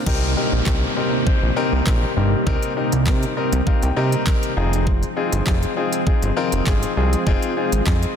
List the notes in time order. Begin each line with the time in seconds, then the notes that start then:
0.06 C2 C3 G3 A#3 C4 D#4 G4 A#4, kick, crash, downlifter
0.36 C4 D#4 G4 A#4
0.53 A#1
0.66 C2 C4 D#4 G4 A#4, kick, snare, clap
0.96 C4 D#4 G4 A#4
1.26 C4 D#4 G4 C5, kick
1.43 A#1
1.56 C4 D#4 G4 A#4
1.73 C2
1.86 A#1 C4 D#4 A#4, kick, snare, clap
2.16 G1 C4 D#4 G4 A#4
2.46 C2 C4 D#4 G4 A#4, kick
2.63 closed hi-hat
2.76 C4 D#4 G4 A#4
2.92 C2, closed hi-hat
3.06 C3 C4 D#4 G4 A#4, kick, snare, clap
3.23 closed hi-hat
3.37 C4 D#4 G4 A#4 D#5
3.53 C2, closed hi-hat
3.67 C4 D#4 G4 A#4 F5, kick
3.83 C2 G5, closed hi-hat
3.96 C3 C4 D#4 G4 A#4 A#5
4.12 closed hi-hat
4.26 C4 D#4 G4 A#4 C6, kick, snare, clap
4.43 closed hi-hat
4.57 F1 F3 C4 D#4 F4 G#4 A#5
4.73 closed hi-hat
4.87 kick
5.03 closed hi-hat
5.16 C4 D#4 F4 G#4
5.33 G1, closed hi-hat
5.46 F1 C4 D#4 F4 G#4, kick, snare, clap
5.63 closed hi-hat
5.77 C4 D#4 F4 G#4
5.93 closed hi-hat
6.07 C4 D#4 F4 G#4, kick
6.22 G1, closed hi-hat
6.37 C4 D#4 F4 A#4
6.52 F1, closed hi-hat
6.66 G1 C4 D#4 F4 G#4, kick, snare, clap
6.83 closed hi-hat
6.97 C2 C4 D#4 F4 G#4
7.13 closed hi-hat
7.26 F1 C4 D#4 F4 G#4, kick
7.42 closed hi-hat
7.57 C4 D#4 F4 G#4
7.72 G#1, closed hi-hat
7.86 F2 C4 D#4 F4 G#4, kick, snare, clap
8.03 closed hi-hat